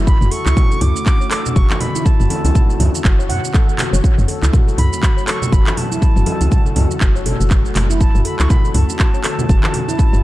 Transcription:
Already playing: F#1 A3
0.07 D3 C#4 F#4 B5, kick, shaker
0.21 F#1 F#4, mid tom, muted conga, shaker
0.31 A4 C#6, open hi-hat
0.46 C#2 E4, clap, muted conga, shaker
0.56 F#4, kick, low conga, shaker
0.71 A4, muted conga, shaker
0.81 C#2 D6, mid tom, open hi-hat
0.96 muted conga, shaker
1.06 F#4, kick, clap, shaker
1.21 C#5, shaker
1.31 A4, clap, open hi-hat, muted conga
1.46 low conga, shaker
1.55 F#1 F#4 C#6, kick, muted conga, high conga, shaker
1.70 A4, clap, high conga, shaker
1.80 B5, open hi-hat, muted conga, low conga
1.95 E4, high conga, shaker
2.05 A5, kick, shaker
2.20 F#1 F#4, mid tom, muted conga, shaker
2.30 A4, open hi-hat, high conga
2.44 C#2 E4, open hi-hat, muted conga, high conga, shaker
2.55 F#4, kick, low conga, shaker
2.69 A4, muted conga, shaker
2.80 C#2, mid tom, open hi-hat, high conga
2.95 muted conga, shaker
3.04 F#1 F#4, kick, clap, shaker
3.19 C#5, shaker
3.29 F#2 F#5, open hi-hat, muted conga, low conga
3.44 shaker
3.54 A4, kick, clap, muted conga, shaker
3.68 A4, shaker
3.78 F#4, clap, open hi-hat, muted conga, low conga
3.93 F#1 C#5, high conga, shaker
4.04 C#3 F#3 A3, kick, shaker
4.18 F#1 F#4, mid tom, muted conga, shaker
4.28 A4, open hi-hat
4.43 C#2 E4, clap, muted conga, shaker
4.53 F#4, kick, low conga, shaker
4.67 A4, muted conga, shaker
4.78 C#2 B5, mid tom, open hi-hat
4.93 muted conga, shaker
5.03 F#4, kick, clap, shaker
5.17 C#5, shaker
5.27 A4 C#6, clap, open hi-hat, muted conga
5.42 low conga, shaker
5.52 F#1 F#4 B5, kick, muted conga, high conga, shaker
5.67 A4, clap, high conga, shaker
5.77 A5, open hi-hat, muted conga, low conga
5.92 E4, high conga, shaker
6.02 kick, shaker
6.16 F#1 F#4, mid tom, muted conga, shaker
6.26 A4, open hi-hat, high conga
6.41 C#2 E4, open hi-hat, muted conga, high conga, shaker
6.51 F#4, kick, low conga, shaker
6.66 A4, muted conga, shaker
6.76 C#2, mid tom, open hi-hat, high conga
6.91 muted conga, shaker
7.01 F#1 F#4, kick, clap, shaker
7.16 C#5, shaker
7.26 A4, open hi-hat, muted conga, low conga
7.40 F#1, shaker
7.50 F#4, kick, clap, muted conga, shaker
7.65 A4, shaker
7.75 F#1, clap, open hi-hat, muted conga, low conga
7.90 E4, high conga, shaker
8.00 D3 C#4 A5, kick, shaker
8.15 F#1 F#4, mid tom, muted conga, shaker
8.25 A4 B5, open hi-hat
8.39 C#2 E4 C#6, clap, muted conga, shaker
8.49 F#4 B5, kick, low conga, shaker
8.65 A4, muted conga, shaker
8.74 C#2 A5, mid tom, open hi-hat
8.89 muted conga, shaker
8.99 F#4, kick, clap, shaker
9.14 C#5, shaker
9.24 A4, clap, open hi-hat, muted conga
9.39 low conga, shaker
9.49 F#1 F#4, kick, muted conga, high conga, shaker
9.63 A4, clap, high conga, shaker
9.74 open hi-hat, muted conga, low conga
9.88 E4, high conga, shaker
9.99 kick, shaker
10.13 F#1 F#4, mid tom, muted conga, shaker

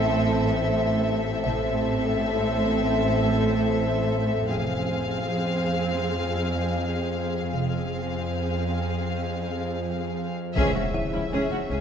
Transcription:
Already playing: A1 A2 C4 A4 C5 E5
1.44 A1 A2 C4 A4 C5 E5
4.49 F1 F2 C4 G#4 C5 F5
7.52 F1 F2 C4 G#4 C5 F5
10.55 C#2 C#4 G#4 C#5 E5, taiko, impact
10.75 C#2 C#4 F#4
10.94 E4 E5
11.13 C#2 C#4 E4
11.32 C#2 C#4 G#4
11.51 C#2 C#4 F#4
11.70 C#2 C#4 G#4, taiko

